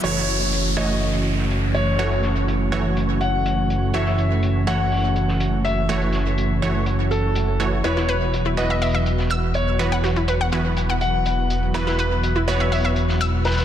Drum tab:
HH |x---x---x---x---o-x-x---x---x---|x-x-x-x-x---x---x---x---x---x---|x---x---x---x---o-x-x---x---x---|x-x-x-x-x---x---x---x---x---x---|
SD |--o-------------------o---------|----o---------------------------|--o-------------------o---------|----o---------------------------|

HH |x---x---x---x---o-x-x---x---x---|x-x-x-x-x---x---x---x---x---x---|x---x---x---x---o-x-x---x---xxx-|
SD |--o-------------------o---------|----o---------------------------|--o-------------------o-----ooo-|